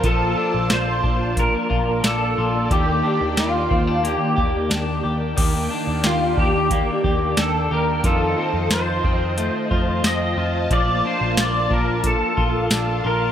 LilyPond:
<<
  \new Staff \with { instrumentName = "String machine" } { \time 4/4 \key ees \lydian \tempo 4 = 90 << { <f' a''>1 | <ees g''>1 | <ees g''>1 | <f' a''>1~ |
<f' a''>1 | } \\ { <bes d''>1~ | <bes d''>1 | <bes d''>1 | <c'' ees''>1 |
<bes f''>1 | } >> }
  \new Staff \with { instrumentName = "Pedal steel guitar" } { \time 4/4 \key ees \lydian a'4 c''4 bes'4 a'4 | g'4 f'4 g'4. r8 | r4 f'8 g'4. a'8 bes'8 | a'4 c''2 ees''4 |
d''8 c''8 d''8 bes'8 a'4. bes'8 | }
  \new Staff \with { instrumentName = "Clean electric guitar" } { \time 4/4 \key ees \lydian <f f'>8 d'8 f'8 d'4 f'8 d'8 f'8 | <ees g'>8 d'8 g'8 c'16 d'16 bes8 g'8 d'8 g'8 | <ees g'>8 d'8 g'8 d'8 bes8 g'8 d'8 g'8 | <ees f'>8 c'8 f'8 c'8 a8 f'8 c'8 f'8 |
<f f'>8 d'8 f'8 d'4 f'8 d'8 f'8 | }
  \new Staff \with { instrumentName = "Picked electric bass" } { \clef bass \time 4/4 \key ees \lydian bes,,8 r16 bes,,16 bes,,8 bes,,8. r16 bes,,8 bes,,8 bes,,8 | ees,8 r16 ees,16 ees,8 ees,8. r16 ees,8 ees,8 ees,8 | ees,8 r16 ees,16 ees,8 ees,8. r16 ees,8 ees,8 ees,8 | f,8 r16 f,16 f,8 f,8. r16 f,8 f,8 f,8 |
bes,,8 r16 bes,,16 bes,,8 bes,,8. r16 bes,,8 bes,,8 bes,,8 | }
  \new DrumStaff \with { instrumentName = "Drums" } \drummode { \time 4/4 <hh bd>4 <hh sn>8 bd8 <hh bd>8 bd8 <hh sn>4 | <hh bd>4 <hh sn>8 bd8 hh8 bd8 <hh sn>4 | <cymc hh bd>4 <hh sn>8 bd8 <hh bd>8 bd8 <hh sn>4 | <hh bd>4 <hh sn tamb>8 bd8 hh8 bd8 <hh sn tamb>4 |
<hh bd>4 <hh sn tamb>8 bd8 <hh bd>8 bd8 <hh sn tamb>4 | }
>>